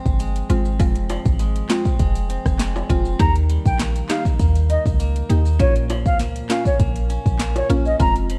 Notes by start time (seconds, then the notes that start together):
Already playing: F2 F3 G#3 C4
0.06 G1, kick, maracas
0.20 G#3, closed hi-hat, maracas
0.36 closed hi-hat, maracas
0.50 G#1 G#3 C4 F4, closed hi-hat, maracas
0.65 maracas
0.80 F1 F2 G#3 C4 F4, kick, closed hi-hat, maracas
0.95 closed hi-hat, maracas
1.10 F3, closed hi-hat, high timbale, maracas
1.26 G#1, kick, maracas
1.39 G#3, closed hi-hat, maracas
1.56 closed hi-hat, maracas
1.69 G#3 C4 F4, snare, clap, closed hi-hat, maracas
1.85 kick, maracas
1.99 F1 G#3, kick, closed hi-hat, maracas
2.15 closed hi-hat, maracas
2.29 C4, closed hi-hat, maracas
2.46 F1, kick, cross-stick, maracas
2.59 G#3, snare, clap, closed hi-hat, maracas
2.76 high timbale, maracas
2.89 F1 G#3 C4 F4, kick, closed hi-hat, maracas
3.05 maracas
3.19 D#2 D#3 A#3 D#4 G4 A#5, kick, closed hi-hat, maracas
3.36 closed hi-hat, maracas
3.50 G3, closed hi-hat, maracas
3.65 A#1 G5, kick, maracas
3.79 A#3, snare, clap, closed hi-hat, maracas
3.96 closed hi-hat, maracas
4.09 A#3 D#4 G4 F5, snare, clap, closed hi-hat, maracas
4.25 kick, maracas
4.39 D#2 A#3, kick, closed hi-hat, maracas
4.55 closed hi-hat, maracas
4.70 D#4 D#5, closed hi-hat, maracas
4.86 C#2, kick, maracas
5.00 A#3, closed hi-hat, maracas
5.16 closed hi-hat, maracas
5.29 D#2 A#3 D#4 G4, closed hi-hat, maracas
5.46 maracas
5.59 A#1 A#2 A#3 C#4 F4 C#5, kick, closed hi-hat, maracas
5.76 closed hi-hat, maracas
5.90 F3, closed hi-hat, high timbale, maracas
6.06 C#2 F5, kick, maracas
6.19 A#3, snare, closed hi-hat, maracas
6.36 closed hi-hat, maracas
6.50 A#3 C#4 F4 F5, snare, clap, closed hi-hat, maracas
6.65 C#5, kick, maracas
6.80 A#1 A#3, kick, closed hi-hat, maracas
6.96 closed hi-hat, maracas
7.10 C#4, closed hi-hat, maracas
7.26 A#1, kick, maracas
7.39 A#3, snare, clap, closed hi-hat, maracas
7.56 C#5, closed hi-hat, high timbale, maracas
7.70 A#1 A#3 C#4 F4, closed hi-hat, maracas
7.85 D#5, maracas
8.00 F1 F2 G#3 C4 F4 A#5, kick, closed hi-hat, maracas
8.16 closed hi-hat, maracas
8.30 F3, closed hi-hat, maracas